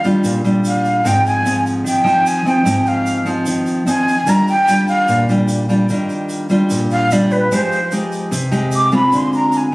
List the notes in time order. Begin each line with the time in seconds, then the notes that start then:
Already playing: D#3
0.04 G3 D4 F4, shaker
0.24 A#2, shaker
0.44 G3 D4 F4, shaker
0.65 F5, shaker
0.85 shaker
1.04 G#2 F3 C4 D#4 G5, shaker
1.26 G#5, shaker
1.45 F3 C4 D#4, shaker
1.66 shaker
1.84 D#3 G5, shaker
2.04 F3 C4 D#4, shaker
2.26 G#5, shaker
2.45 F3 C4 D#4 G5, shaker
2.65 G#2 F3 C4 D#4, shaker
2.86 F5, shaker
3.06 shaker
3.26 F3 C4 D#4, shaker
3.46 D#3, shaker
3.66 shaker
3.86 F3 C4 D#4 G#5, shaker
4.08 shaker
4.26 D#3 G3 D4 F4 A#5, shaker
4.48 G5, shaker
4.68 G3 D4 F4, shaker
4.88 F5, shaker
5.08 A#2, shaker
5.29 G3 D4 F4, shaker
5.48 shaker
5.69 G3 D4 F4, shaker
5.89 D#3 G3 D4 F4, shaker
6.09 shaker
6.29 shaker
6.49 G3 D4 F4, shaker
6.70 A#2, shaker
6.91 F5, shaker
7.11 G3 D4 F4 D5, shaker
7.31 B4, shaker
7.52 F3 G#3 D#4 G4 C5, shaker
7.72 shaker
7.92 G#3 D#4 G4, shaker
8.12 shaker
8.31 C3, shaker
8.51 G#3 D#4 G4, shaker
8.72 D6, shaker
8.92 G#3 C4 F4 B5, shaker
9.12 D3, shaker
9.16 C6
9.33 A#5, shaker
9.52 shaker
9.57 G#5